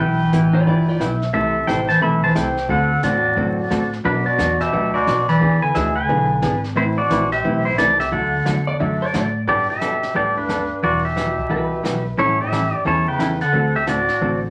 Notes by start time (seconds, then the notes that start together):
0.00 B1 B2 E3 B3 E4 G4 B4 G5
0.32 A1 B2 E3 B3 E4 G4, snare, hi-hat pedal
0.53 F4 D5
0.66 G1 B2 E3 B3 E4 F4 G4 D5, brush sweep
0.88 F4 D5
0.99 B1 B2 E3 B3 E4 G4 E5, snare, hi-hat pedal
1.22 snare
1.33 C2 C3 E3 A3 E4 A4 E5, brush sweep
1.67 A1 C3 E3 A3 E4 A4 C5 G5, snare, hi-hat pedal
1.89 E3 C5 A5, snare
2.01 B1 C3 E3 A3 E4 A4 E5 B5, brush sweep
2.23 E3 C5 A5
2.35 C2 C3 E3 A3 E4 A4 C5 G5, snare, hi-hat pedal
2.57 snare
2.69 D2 D3 A3 C4 F#4 A4 F#5, brush sweep
3.03 E2 A2 D3 A3 C4 F#4 A4 D5, snare, hi-hat pedal
3.36 F#2 D3 A3 C4 F#4 A4, brush sweep
3.70 A2 D3 A3 C4 F#4 A4, snare, hi-hat pedal
3.93 snare
4.04 F#2 B2 F#3 B3 D4 F#4 B4, brush sweep
4.26 B2 F#4 D5
4.38 E2 B2 F#3 B3 D4 F#4, snare, hi-hat pedal
4.59 B2 G4 E5, snare
4.72 D2 B2 F#3 B3 D4 F#4, brush sweep
4.94 B2 F#4 D5
5.07 B1 B2 F#3 B3 D4 F#4, snare, hi-hat pedal
5.28 E3 D5 B5, snare
5.41 E2 E3 B3 D4 G#4, brush sweep
5.62 D3 B4 G#5
5.74 D2 B2 E3 B3 D4 G#4 E5, snare, hi-hat pedal
5.96 D3 B4 G#5
6.09 B1 E3 B3 D4 G#4, brush sweep
6.42 G#1 E3 B3 D4 G#4, snare, hi-hat pedal
6.64 snare
6.76 A1 A2 E3 A3 C4 E4 B4 C5, brush sweep
6.98 B2 F#4 D5
7.10 A#1 E3 A3 C4 E4 B4, snare, hi-hat pedal
7.32 C3 G4 E5, snare
7.44 B1 E3 A3 C4 E4 B4, brush sweep
7.65 A2 E4 C5
7.78 C2 B2 E3 A3 C4 E4 A4 B4 D5, snare, hi-hat pedal
8.00 C3 G4 E5, snare
8.12 D2 D3 F#3 A3 D4 F#4 A4 F#5, brush sweep
8.45 E2 D3 F#3 A3 D4 F#4, snare, hi-hat pedal
8.67 D5
8.80 F#2 D3 F#3 A3 D4 F#4 E5, brush sweep
9.02 D5
9.13 A2 D3 F#3 A3 D4 F#4 D5, snare, hi-hat pedal
9.47 G1 A2 G3 B3 D4 G4 A4 D5, brush sweep
9.70 B2 G4 E5
9.81 G3 B3 D4 A4, snare, hi-hat pedal
10.03 snare
10.14 D2 A2 G3 B3 D4 G4 A4 D5, brush sweep
10.37 G2 D4 B4
10.49 G3 B3 D4 A4, snare, hi-hat pedal
10.83 E1 G2 E3 G3 B3 F#4 D5, brush sweep
11.05 B2 G4 E5
11.16 E3 G3 B3 F#4, snare, hi-hat pedal
11.38 kick
11.49 C2 E3 G3 B3 F#4 B4, brush sweep
11.83 B1 E3 G3 B3 F#4 B4, snare, hi-hat pedal
12.17 A1 A2 E3 G3 C#4 E4 A4 C#5, brush sweep
12.40 A2 G4 E5
12.52 E3 G3 C#4 E4 A4, snare, hi-hat pedal
12.85 E2 E3 G3 C#4 E4 A4 C#5 A5, brush sweep
13.08 C#3 B4 G5
13.18 E3 G3 C#4 E4 A4, snare, hi-hat pedal
13.41 D3 A4 F#5, snare
13.53 D2 D3 A3 C4 F#4 A4, brush sweep
13.76 C3 G4 E5
13.86 A2 D3 A3 C4 F#4 A4 D5, snare, hi-hat pedal
14.09 snare
14.21 A1 D3 A3 C4 F#4 A4, brush sweep